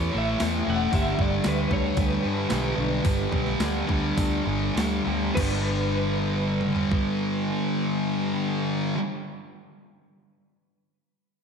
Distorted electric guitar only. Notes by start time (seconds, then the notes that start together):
Already playing: E3 A3
0.13 E3 A3
0.39 A2 E3 A3
0.66 E3 A3
0.90 G2 D3
0.94 G3
1.18 D3 G3
1.70 D3 G3
2.23 D3 G3
2.49 G2 D3 G3
2.76 G3
2.80 D3
3.03 G2 D3 G3
3.30 D3 G3
3.87 D3 G3
4.45 D3 G3
4.75 G2 D3 G3
5.04 D3 G3
5.35 G2 D3
5.40 G3